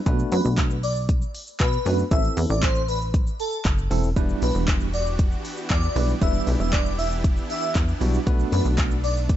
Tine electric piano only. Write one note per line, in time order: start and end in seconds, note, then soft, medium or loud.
0.06 0.76 A3 medium
0.06 0.76 B3 medium
0.06 0.76 D4 medium
0.06 0.77 F#4 medium
0.06 0.77 B4 loud
1.85 2.03 A3 medium
1.85 2.03 B3 medium
1.85 2.03 D4 medium
1.85 2.03 F#4 medium
1.85 2.03 B4 medium
2.11 2.81 C4 medium
2.11 2.82 E4 medium
2.11 2.82 A4 medium
3.91 4.08 C4 medium
3.91 4.08 E4 medium
3.91 4.09 A4 loud
4.16 4.87 G3 medium
4.16 4.87 B3 medium
4.16 4.87 D4 medium
4.16 4.87 E4 medium
4.16 4.87 B4 loud
5.96 6.13 G3 medium
5.96 6.14 B3 medium
5.96 6.14 D4 medium
5.96 6.14 E4 medium
5.96 6.14 B4 medium
6.21 6.92 G3 medium
6.21 6.92 B3 medium
6.21 6.92 D4 medium
6.21 6.92 E4 medium
6.21 6.92 B4 medium
8.01 8.19 G3 loud
8.01 8.19 B3 medium
8.01 8.19 D4 medium
8.01 8.19 E4 medium
8.01 8.19 F#4 loud
8.27 8.97 A3 medium
8.27 8.97 B3 medium
8.27 8.97 D4 medium
8.27 8.97 F#4 medium
8.27 8.97 B4 loud